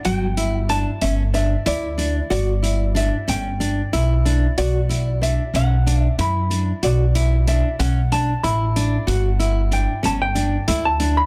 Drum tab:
HH |xxxxxxx|xxxxxxx|xxxxxxx|xxxxxxx|

HH |xxxxxxx|